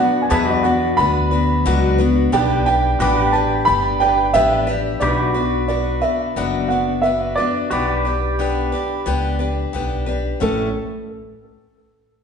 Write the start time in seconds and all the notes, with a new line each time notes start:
Already playing: B2 D4 F#4 B4 D5 F#5
0.00 B3 D4
0.22 G#5
0.29 E2 B2 F#3 B3 D4 F#4 G#4 B4 E5 A5
0.56 F#4 D5
0.63 B3 D4 F#4 B4 F#5
0.97 D2 B3 D4 F#4 B4 B5
1.31 B3 D4 F#4 B4
1.66 C#2 B2 F#3 B3 D4 F#4 B4
1.98 B3 D4 F#4 B4
2.32 B1 B3 D4 G4 B4 D5 G5
2.66 D4 G4 B4 G5
3.00 A1 B3 D4 F#4 G4 B4 D5
3.20 G4
3.32 D4 G4 B4 A5
3.65 G1 B3 D4 G4 B4 B5
4.00 D4 G4 B4 D5 G5
4.34 A1 B3 D4 G4 B4 E5
4.67 D4 G4 B4
5.00 B1 B2 F#3 B3 D4 F#4 G4 B4 D5
5.04 D5
5.22 F#4
5.34 B3 D4 F#4 B4
5.68 B3 D4 F#4 B4 D5
6.01 B3 D4 F#4 B4 E5
6.36 F#1 B2 F#3 B3 D4 F#4 B4
6.68 D4 F#4 B4 F#5
6.72 B3
7.02 B3 D4 F#4 E5
7.06 B4
7.36 D4 F#4 B4 D5
7.40 B3
7.71 B1 B3 D4 F#4 G4 B4 D5
7.91 G4
8.05 D4 G4 B4
8.39 B3 D4 G4 B4
8.72 D4 G4 B4
9.06 C#2 B3 D4 G4 B4
9.39 D4 G4 B4
9.73 B1 B3 D4 G4 B4
10.06 D4 G4 B4
10.40 A1 A2 A3 C#4 E4 A4